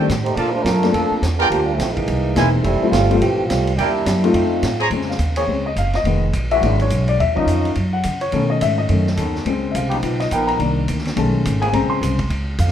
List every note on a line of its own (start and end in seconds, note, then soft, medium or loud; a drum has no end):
0.09 0.36 A2 medium
0.09 snare medium
0.09 hi-hat pedal medium
0.09 ride medium
0.24 0.36 A3 medium
0.24 0.36 D#4 medium
0.24 0.35 G4 medium
0.24 0.35 C5 medium
0.24 ride soft
0.36 0.64 A#2 medium
0.36 0.54 F3 medium
0.36 0.53 A#3 medium
0.36 0.52 D4 medium
0.36 0.48 F4 medium
0.36 0.53 A4 medium
0.36 0.48 A#4 medium
0.36 0.48 D5 medium
0.36 0.48 A5 medium
0.36 ride medium
0.53 0.62 A3 medium
0.53 0.62 D4 medium
0.53 0.65 F4 medium
0.53 0.65 C5 loud
0.62 0.92 F#2 loud
0.62 0.89 F3 medium
0.62 0.93 A3 medium
0.62 0.90 D4 medium
0.62 0.92 A#4 loud
0.62 snare medium
0.62 hi-hat pedal medium
0.62 ride medium
0.83 1.20 F3 medium
0.83 1.20 A3 medium
0.83 1.20 A#3 medium
0.83 1.20 C4 medium
0.83 1.21 D4 medium
0.83 snare soft
0.83 ride medium
0.91 1.10 F2 medium
0.91 1.18 F3 medium
0.91 1.19 A#3 medium
0.91 1.19 D4 medium
0.91 1.19 A4 medium
0.91 ride medium
1.11 muted upright bass stroke soft
1.22 1.50 E2 medium
1.22 snare medium
1.22 hi-hat pedal medium
1.22 ride medium
1.36 1.46 F3 medium
1.36 1.48 B3 medium
1.36 1.46 D4 medium
1.36 1.47 F4 loud
1.36 1.48 G#4 medium
1.36 1.47 A#4 medium
1.36 1.47 D5 medium
1.36 1.47 G5 loud
1.36 ride soft
1.47 1.78 D2 medium
1.47 1.66 F3 medium
1.47 1.64 A#3 medium
1.47 1.64 D4 medium
1.47 1.66 G4 medium
1.52 ride medium
1.64 1.77 G3 medium
1.64 1.78 A#3 medium
1.64 1.77 D4 medium
1.64 1.78 F4 medium
1.75 1.94 F3 medium
1.75 1.94 A3 medium
1.75 1.94 C4 medium
1.75 1.94 E4 medium
1.79 2.06 A#1 medium
1.79 snare medium
1.79 hi-hat pedal medium
1.79 ride medium
1.93 2.51 E3 medium
1.93 2.51 G#3 medium
1.93 2.51 A#3 medium
1.93 2.51 D#4 medium
1.97 kick medium
1.97 ride soft
2.08 2.35 C2 medium
2.08 ride medium
2.35 2.63 E1 medium
2.35 2.64 E3 soft
2.35 2.64 G#3 soft
2.35 2.65 A#3 soft
2.35 2.65 C4 medium
2.35 2.65 D#4 medium
2.35 2.47 E4 medium
2.35 2.47 A#4 medium
2.35 2.48 C5 medium
2.35 2.47 G#5 medium
2.35 snare medium
2.35 hi-hat pedal medium
2.35 ride medium
2.61 2.80 F1 medium
2.61 2.88 G3 medium
2.61 2.87 A3 medium
2.61 2.88 C4 medium
2.61 2.89 E4 medium
2.61 ride medium
2.82 2.92 F3 medium
2.82 2.92 G3 medium
2.82 2.92 A3 medium
2.82 2.92 C4 medium
2.82 2.92 E4 medium
2.82 muted upright bass stroke soft
2.89 3.20 G1 loud
2.89 3.17 G3 medium
2.89 3.16 A3 medium
2.89 3.16 C4 medium
2.89 3.17 F4 medium
2.93 snare medium
2.93 hi-hat pedal medium
2.93 ride medium
3.10 3.20 F3 medium
3.10 3.20 G3 medium
3.10 3.20 A3 medium
3.10 3.20 C4 medium
3.10 3.21 F4 medium
3.10 ride medium
3.17 3.47 E3 medium
3.17 3.44 A3 medium
3.17 3.45 C4 medium
3.17 3.47 G4 medium
3.21 3.48 A#1 medium
3.21 ride medium
3.46 3.77 C2 medium
3.46 3.75 G3 medium
3.46 3.76 A3 medium
3.46 3.76 C4 medium
3.46 3.76 F4 medium
3.50 snare medium
3.50 hi-hat pedal medium
3.50 ride medium
3.67 ride soft
3.75 4.05 E2 medium
3.75 4.30 G3 medium
3.75 4.29 A#3 medium
3.75 4.29 D4 medium
3.75 4.29 E4 medium
3.75 3.89 E4 medium
3.75 3.89 A#4 medium
3.75 3.89 D5 medium
3.75 3.89 G5 medium
3.75 ride medium
4.06 4.33 F#2 loud
4.06 snare medium
4.06 hi-hat pedal medium
4.06 ride medium
4.23 4.61 F3 medium
4.23 4.61 A3 medium
4.23 4.61 C4 medium
4.23 4.61 D#4 medium
4.23 4.61 F4 medium
4.23 ride soft
4.31 4.61 F2 medium
4.31 4.79 A3 medium
4.31 4.78 C4 medium
4.31 4.79 D#4 medium
4.31 4.78 F4 medium
4.31 ride medium
4.62 4.90 A2 medium
4.62 snare medium
4.62 hi-hat pedal soft
4.62 ride medium
4.79 4.87 G#4 medium
4.79 4.87 C5 medium
4.79 4.87 C#5 medium
4.79 4.87 A#5 loud
4.79 ride medium
4.90 5.18 F2 medium
4.90 5.12 C#3 soft
4.90 5.12 G#3 soft
4.90 5.13 C4 medium
4.90 ride medium
5.01 snare soft
5.09 5.35 F5 medium
5.09 snare soft
5.19 5.46 D#2 medium
5.19 hi-hat pedal medium
5.19 ride medium
5.35 5.44 C#3 medium
5.35 5.44 A#3 medium
5.35 5.44 C4 medium
5.35 5.43 G#4 medium
5.35 5.63 C#5 medium
5.35 ride medium
5.47 5.75 C#2 medium
5.47 5.63 C#3 soft
5.47 5.63 G#3 soft
5.47 5.64 C4 soft
5.66 5.77 D#5 medium
5.76 6.03 F#1 medium
5.76 5.94 F5 medium
5.76 hi-hat pedal medium
5.76 ride medium
5.93 6.21 D#5 medium
5.93 snare soft
5.93 ride soft
6.04 6.32 F1 medium
6.04 6.26 D#3 soft
6.04 6.26 G#3 soft
6.04 6.26 B3 medium
6.04 ride medium
6.33 6.61 A#1 medium
6.33 hi-hat pedal soft
6.33 ride medium
6.51 6.88 E3 medium
6.51 6.88 G#3 medium
6.51 6.88 D4 medium
6.51 6.88 F#4 medium
6.51 6.77 E5 medium
6.51 ride soft
6.61 6.89 G#1 medium
6.61 7.16 F#3 soft
6.61 7.17 G#3 soft
6.61 7.17 D4 medium
6.61 ride medium
6.80 7.07 C#5 medium
6.80 ride soft
6.90 7.18 B1 medium
6.90 hi-hat pedal medium
6.90 ride medium
7.08 7.19 D5 medium
7.08 ride soft
7.19 7.46 D#2 medium
7.19 7.36 E5 medium
7.19 ride medium
7.35 7.74 D#3 medium
7.35 7.73 F3 soft
7.35 7.73 F#3 soft
7.35 7.74 A#3 medium
7.35 7.74 C#4 soft
7.35 7.74 C#4 medium
7.35 7.74 D#4 loud
7.35 7.62 D#5 medium
7.35 kick soft
7.46 7.74 F2 medium
7.46 hi-hat pedal medium
7.46 ride medium
7.65 ride soft
7.75 8.03 F#2 medium
7.75 ride medium
7.93 8.19 F#5 medium
8.03 8.32 C#3 medium
8.03 hi-hat pedal medium
8.03 ride medium
8.21 8.47 C#5 medium
8.21 ride soft
8.32 8.60 B2 medium
8.32 8.87 D#3 soft
8.32 8.44 D#3 medium
8.32 8.88 A3 soft
8.32 8.44 B3 medium
8.32 8.44 C#4 medium
8.32 8.89 C#4 medium
8.32 8.44 A4 medium
8.32 ride medium
8.50 8.61 D#5 medium
8.61 8.88 G#2 medium
8.61 8.78 E5 medium
8.61 hi-hat pedal medium
8.61 ride medium
8.78 9.04 D#5 medium
8.89 9.16 F#2 medium
8.89 9.04 D#3 soft
8.89 9.05 A3 soft
8.89 9.05 C#4 soft
8.89 ride medium
9.07 snare soft
9.15 9.45 D#2 medium
9.15 9.45 D#3 medium
9.15 9.45 B3 medium
9.15 9.45 C#4 medium
9.15 9.45 A4 medium
9.15 hi-hat pedal soft
9.15 ride medium
9.36 snare soft
9.45 9.73 C#2 medium
9.45 10.00 C#3 soft
9.45 10.00 G#3 soft
9.45 10.00 C4 medium
9.45 ride medium
9.72 10.02 C2 medium
9.72 9.74 E5 soft
9.72 hi-hat pedal medium
9.72 ride medium
9.76 10.17 F5 medium
9.88 9.97 F3 medium
9.88 9.97 B3 medium
9.88 9.98 D#4 medium
9.88 9.97 G4 loud
9.88 ride soft
10.02 10.30 B1 medium
10.02 10.23 F3 soft
10.02 10.23 B3 soft
10.02 10.23 D#4 soft
10.02 ride medium
10.20 10.31 D#5 medium
10.20 snare soft
10.20 ride soft
10.31 10.59 A#1 medium
10.31 10.60 F3 medium
10.31 10.60 B3 medium
10.31 10.60 D#4 medium
10.31 10.60 A#4 loud
10.31 10.48 G5 medium
10.31 hi-hat pedal medium
10.31 ride medium
10.47 10.85 A#5 medium
10.47 ride soft
10.59 10.87 C2 medium
10.59 11.13 D#3 soft
10.59 11.13 A#3 soft
10.59 11.14 D4 medium
10.59 ride medium
10.88 11.16 D2 medium
10.88 hi-hat pedal medium
10.88 ride medium
10.98 snare soft
11.05 snare soft
11.05 ride soft
11.16 11.44 B1 medium
11.16 11.59 D#3 soft
11.16 11.59 G#3 soft
11.16 11.60 A3 soft
11.16 11.60 C#4 medium
11.16 11.59 A5 medium
11.16 ride medium
11.45 11.73 G#1 medium
11.45 hi-hat pedal medium
11.45 ride medium
11.60 11.69 C#3 medium
11.60 11.69 A#3 medium
11.60 11.69 C4 medium
11.60 11.68 G#4 loud
11.60 11.73 G#5 medium
11.60 ride soft
11.72 11.89 A#1 medium
11.72 12.16 C#3 medium
11.72 12.16 G#3 soft
11.72 12.16 C4 medium
11.72 11.90 A#5 medium
11.72 ride medium
11.90 12.27 C6 medium
11.90 muted upright bass stroke soft
12.01 12.29 C2 medium
12.01 hi-hat pedal medium
12.01 ride medium
12.19 kick medium
12.19 ride medium
12.30 12.57 C#2 medium
12.30 ride medium
12.59 12.72 F2 loud
12.59 12.72 F5 medium
12.59 hi-hat pedal medium
12.59 ride medium
12.68 snare soft